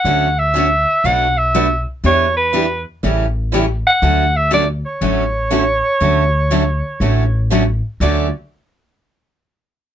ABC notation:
X:1
M:4/4
L:1/8
Q:"Swing" 1/4=121
K:D
V:1 name="Soprano saxophone"
f e3 f e2 z | c B2 z4 f- | f e d c4- c- | c6 z2 |
d z6 z |]
V:2 name="Steel-string acoustic guitar"
[D,A,CFA] z [D,A,CFA] z [B,,F,A,DFB] z [B,,F,A,DFB] z | [E,G,DEB] z [E,G,DEB] z [E,G,CEA] z [E,G,CEA] z | [D,A,CFA] z [D,A,CFA] z [D,A,CFA] z [D,A,CFA] z | [D,A,CFA] z [D,A,CFA] z [D,A,CFA] z [D,A,CFA] z |
[D,A,CFA] z6 z |]
V:3 name="Steel-string acoustic guitar"
[D,F,A,CF] z [D,F,A,CF] z [B,,F,A,DF] z [B,,F,A,DF] z | [E,B,DG] z [E,B,DG] z [C,E,A,CG] z [C,E,A,CG] z | [D,F,A,CF] z [D,F,A,CF] z [D,F,A,CF] z [D,F,A,CF] z | [D,F,A,CF] z [D,F,A,CF] z [D,F,A,CF] z [D,F,A,CF] z |
[D,F,A,CF] z6 z |]
V:4 name="Upright bass" clef=bass
D,,4 B,,,4 | E,,4 A,,,4 | D,,4 A,,,4 | D,,4 A,,,4 |
D,, z6 z |]